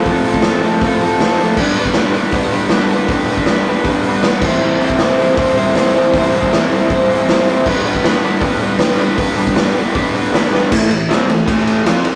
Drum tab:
CC |----------------|x---------------|--------------x-|----------------|
RD |----------------|----------------|----------------|----------------|
HH |o-o-o-o-o-o-o-o-|--o-o-o-o-o-o-o-|o-o-o-o-o-o-o---|--o-o-o-o-o-o-o-|
SD |----o-------o---|----o-------o---|----o-------o---|----o-------oo--|
BD |o--o----o-------|o--o----o-------|o--o----o-----o-|---o----o-------|

CC |----------------|x---------------|----------------|x---------------|
RD |----------------|----------------|----------------|--x-x-x-x-x-x-x-|
HH |o-o-o-o-o-o-o-o-|--o-o-o-o-o-o-o-|o-o-o-o-o-o-o---|----------------|
SD |----o-------o---|----o-------oo--|----o-------ooo-|----oo---o--o---|
BD |o--o----o-------|o--o----o-------|o--o----o-------|o-------o-------|